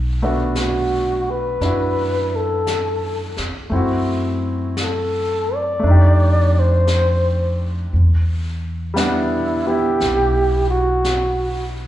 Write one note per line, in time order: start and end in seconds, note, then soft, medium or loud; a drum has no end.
0.00 1.57 B1 medium
0.22 3.68 A3 soft
0.22 3.72 B3 soft
0.22 1.60 D4 soft
0.22 1.63 F#4 soft
0.55 1.32 F#4 medium
0.55 brush sweep soft
0.55 snare soft
0.55 hi-hat pedal soft
1.31 2.37 B4 medium
1.61 3.34 F#2 soft
1.61 3.72 D4 soft
1.61 3.71 E4 soft
1.61 3.73 F#4 soft
1.61 brush sweep soft
1.61 snare soft
2.36 3.40 A4 medium
2.67 brush sweep soft
2.67 snare soft
2.67 hi-hat pedal soft
3.37 muted upright bass stroke soft
3.37 snare soft
3.70 5.78 F#2 medium
3.70 5.78 A3 soft
3.70 5.82 C4 soft
3.70 5.83 E4 soft
3.70 brush sweep soft
3.75 5.84 F#4 soft
4.77 brush sweep soft
4.77 snare soft
4.77 hi-hat pedal soft
4.83 5.56 A4 medium
5.55 6.60 D5 medium
5.79 7.90 A3 soft
5.79 brush sweep soft
5.83 7.88 F2 medium
5.83 7.92 D4 soft
5.83 7.94 D#4 soft
5.91 7.96 G4 soft
6.59 7.61 C5 medium
6.87 brush sweep soft
6.87 snare soft
6.87 hi-hat pedal soft
7.93 9.97 E2 medium
7.93 brush sweep soft
8.94 11.87 G3 soft
8.94 9.65 B3 soft
8.94 11.87 D4 soft
8.94 brush sweep soft
8.94 snare soft
8.94 hi-hat pedal soft
8.99 9.69 E4 medium
8.99 11.87 F#5 soft
9.67 11.87 B3 soft
9.67 11.87 E4 soft
9.67 10.69 G4 medium
10.00 11.87 B1 medium
10.00 brush sweep soft
10.00 snare soft
10.70 11.71 F#4 medium
11.04 brush sweep soft
11.04 snare soft
11.04 hi-hat pedal soft